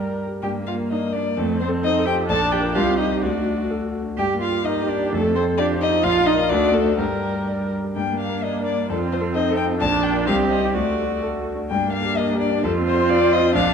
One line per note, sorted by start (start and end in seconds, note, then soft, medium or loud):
0.00 0.40 G2 medium
0.00 0.18 G3 medium
0.00 0.45 D4 soft
0.00 0.10 A#4 soft
0.00 0.20 A#4 medium
0.00 0.20 D5 soft
0.00 0.22 G5 medium
0.10 0.36 A#4 soft
0.27 0.43 G4 soft
0.42 1.35 G2 medium
0.42 1.39 A#3 medium
0.42 0.51 G4 medium
0.42 0.50 G5 medium
0.59 0.85 A#3 soft
0.67 0.75 F4 medium
0.67 0.75 F5 medium
0.75 1.00 A#4 soft
0.90 1.16 D4 medium
0.90 0.99 D#4 medium
0.90 1.15 D#5 medium
1.07 1.31 A#4 medium
1.13 1.23 D4 medium
1.13 1.39 D5 medium
1.22 1.37 D4 soft
1.37 2.27 F2 medium
1.37 1.60 A3 medium
1.37 2.28 C4 medium
1.37 1.60 A4 medium
1.53 1.77 C4 medium
1.60 1.69 C4 medium
1.60 1.68 C5 medium
1.68 1.92 A4 medium
1.83 2.07 D#4 medium
1.83 2.08 C5 medium
1.83 2.06 D#5 loud
1.99 2.23 A4 medium
2.06 2.29 G4 medium
2.06 2.15 G5 loud
2.14 2.29 F4 medium
2.29 2.74 A#1 medium
2.29 2.77 D4 loud
2.29 2.38 A4 loud
2.29 2.53 A5 loud
2.44 2.69 D4 medium
2.52 2.61 G4 medium
2.52 2.75 G5 loud
2.59 2.73 F4 medium
2.59 2.74 A#4 medium
2.75 3.21 C2 medium
2.75 3.00 F4 loud
2.75 3.24 G4 medium
2.75 2.98 F5 loud
2.91 3.16 C4 medium
2.99 3.24 D#4 medium
2.99 3.22 D#5 medium
3.07 3.21 D#4 soft
3.07 3.21 G4 soft
3.22 4.15 D2 medium
3.22 3.70 D4 medium
3.22 3.94 F#4 medium
3.22 3.69 D5 medium
3.38 3.64 A3 soft
3.54 3.80 F#4 soft
3.70 3.96 A4 medium
3.86 4.12 F#4 soft
4.03 4.18 D4 soft
4.18 5.10 G2 medium
4.18 4.40 G4 loud
4.18 4.26 G5 medium
4.35 4.60 A#3 medium
4.42 4.66 F4 medium
4.42 4.67 F5 medium
4.50 4.75 G4 medium
4.65 4.91 D#4 medium
4.65 5.15 G4 medium
4.65 4.91 A#4 medium
4.65 4.90 D#5 medium
4.82 5.07 G4 medium
4.89 5.14 D4 medium
4.89 5.12 D5 medium
4.97 5.13 D4 medium
5.12 6.01 F2 medium
5.12 5.34 A3 loud
5.12 5.35 A4 loud
5.12 5.60 A4 medium
5.29 5.53 C4 medium
5.35 5.43 C4 medium
5.35 5.44 C5 loud
5.44 5.68 C5 medium
5.58 5.80 D4 loud
5.58 5.83 F4 medium
5.58 6.03 G4 medium
5.58 5.66 D5 loud
5.73 5.98 C5 medium
5.81 6.05 D#4 loud
5.81 6.06 D#5 loud
5.88 6.04 F4 medium
6.03 6.48 A#1 medium
6.03 6.52 F4 medium
6.03 6.26 F4 loud
6.03 6.28 F5 loud
6.19 6.44 D4 medium
6.26 6.35 D#4 loud
6.26 6.51 D#5 loud
6.34 6.48 F4 medium
6.34 6.49 A#4 medium
6.49 6.97 D2 medium
6.49 6.75 D4 loud
6.49 6.98 F#4 medium
6.49 6.75 D5 loud
6.65 6.92 D4 medium
6.73 6.98 A3 medium
6.73 7.00 A4 loud
6.82 6.97 F#4 soft
6.82 6.97 C5 medium
6.98 7.93 G2 medium
6.98 7.70 G3 medium
6.98 7.72 G4 medium
6.98 7.70 A#4 medium
7.15 7.41 D4 soft
7.32 7.57 A#4 medium
7.47 7.73 D5 medium
7.64 7.90 A#4 medium
7.80 7.96 G4 soft
7.95 8.87 G2 medium
7.95 8.91 A#3 medium
7.95 8.85 D4 medium
7.95 8.18 G5 medium
8.13 8.38 A#3 medium
8.20 8.44 F5 medium
8.28 8.53 A#4 medium
8.43 8.69 D4 medium
8.43 8.65 D#5 medium
8.59 8.84 A#4 medium
8.66 8.89 D5 medium
8.75 8.90 D4 soft
8.89 9.78 F2 medium
8.89 9.80 C4 medium
8.89 9.37 F4 medium
8.89 8.98 A4 medium
9.06 9.30 C4 medium
9.12 9.20 C5 medium
9.21 9.45 A4 medium
9.35 9.80 D#4 medium
9.35 9.60 C5 medium
9.35 9.56 D#5 loud
9.51 9.75 A4 medium
9.56 9.64 G5 loud
9.66 9.81 F4 medium
9.80 10.26 A#1 medium
9.80 10.29 D4 medium
9.80 10.29 D4 loud
9.80 10.04 A5 loud
9.97 10.21 D4 medium
10.03 10.26 G5 loud
10.12 10.26 F4 medium
10.12 10.26 A#4 medium
10.27 10.73 C2 medium
10.27 10.76 C4 medium
10.27 10.76 G4 loud
10.27 10.35 F5 loud
10.43 10.68 C4 medium
10.50 10.72 D#5 medium
10.59 10.73 D#4 soft
10.59 10.73 G4 medium
10.73 11.68 D2 medium
10.73 11.51 A3 medium
10.73 11.47 F#4 medium
10.73 11.21 D5 medium
10.90 11.16 A3 medium
11.06 11.32 F#4 medium
11.23 11.48 A4 medium
11.39 11.65 F#4 medium
11.55 11.71 D4 soft
11.70 12.62 G2 medium
11.70 12.67 A#3 medium
11.70 12.66 D4 medium
11.70 11.92 G5 medium
11.87 12.12 A#3 medium
11.93 12.19 F5 loud
12.02 12.27 G4 medium
12.17 12.43 A#4 medium
12.17 12.39 D#5 loud
12.33 12.58 G4 medium
12.40 12.63 D5 medium
12.49 12.64 D4 medium
12.64 13.53 F2 medium
12.64 13.57 C4 medium
12.64 13.54 F4 loud
12.64 12.72 A4 loud
12.79 13.04 C4 medium
12.87 13.11 C5 loud
12.95 13.19 C5 medium
13.09 13.34 F4 medium
13.09 13.34 D5 loud
13.24 13.49 C5 medium
13.33 13.55 D#5 loud
13.40 13.55 F4 medium
13.55 13.74 A#1 medium
13.55 13.74 D4 loud
13.55 13.74 D4 medium
13.55 13.74 F5 loud
13.71 13.74 D4 medium